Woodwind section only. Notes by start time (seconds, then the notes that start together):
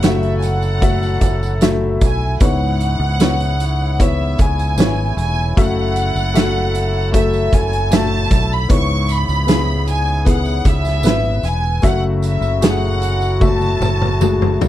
Already playing: F#3 E4 A4
2.41 C#3 B3
5.58 F#3 A4
8.69 C#3 B3
11.83 F#3 E4 F#4